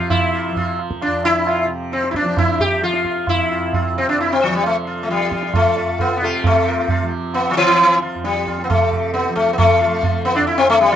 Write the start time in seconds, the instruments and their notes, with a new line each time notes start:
Already playing: tanpura F2 C3 F3
0.10 sitar E4, tabla na, tabla ge
0.35 sitar F4
0.50 tanpura F3
0.56 sitar F4, tabla tin, tabla ge
0.79 tabla na
0.91 tabla ke
1.02 sitar D4, tabla na
1.07 tanpura F2
1.24 sitar E4, tabla na
1.47 sitar F4, tabla na
1.65 tanpura C3
1.92 sitar C4, tabla te
2.04 tabla te
2.11 sitar E4, tabla ke
2.16 sitar D4
2.23 tanpura F3, tabla te
2.37 sitar E4, tabla na, tabla ge
2.60 sitar G4, tabla ge
2.80 tanpura F3, sitar F4, tabla te
2.94 tabla te
3.05 tabla ke
3.16 tabla te
3.27 sitar E4, tabla na, tabla ge
3.37 tanpura F2
3.51 sitar F4
3.73 sitar F4, tabla tin, tabla ge
3.93 tanpura C3, tabla na
3.98 sitar C4
4.09 sitar D4
4.19 sitar E4, tabla na
4.32 sitar C4
4.43 sitar F3
4.50 tanpura F3
4.55 sitar G3
4.64 sitar A3, tabla na
4.87 sitar F4
5.03 sitar A3
5.07 tanpura F3, sitar G3 F4, tabla te
5.20 tabla te
5.32 sitar F4, tabla ke
5.43 tabla te
5.54 sitar A3 F4, tabla na, tabla ge
5.63 tanpura F2
5.76 sitar F4, tabla te
5.99 sitar B3 F4, tabla na, tabla ge
6.17 tanpura C3, sitar B3
6.22 sitar A3 F4, tabla te
6.44 tanpura C3, sitar A3, tabla na, tabla ge
6.68 sitar F4
6.88 sitar F4, tabla tin, tabla ge
7.01 tanpura F3
7.34 sitar B3, tabla na
7.51 sitar F3
7.57 sitar E3, tanpura F3
7.79 sitar F4, tabla na
8.02 sitar F4
8.15 tanpura F2
8.24 sitar G3, tabla te
8.36 tabla te
8.47 sitar F4, tabla ke
8.58 tabla te
8.64 sitar B3
8.70 tanpura C3, sitar A3, tabla na, tabla ge
8.92 tabla ge
9.14 sitar B3, tabla te
9.25 tanpura F3, tabla te
9.35 sitar A3, tabla ke
9.48 tabla te
9.53 sitar B3
9.58 sitar A3, tabla na, tabla ge
9.81 tanpura F3, sitar F4
10.03 sitar F4, tabla tin, tabla ge
10.25 sitar B3, tabla na
10.35 sitar D4 E4
10.40 tanpura F2
10.47 sitar E4, tabla na
10.58 sitar C4
10.69 sitar A3, tabla na
10.81 sitar G3
10.92 sitar F3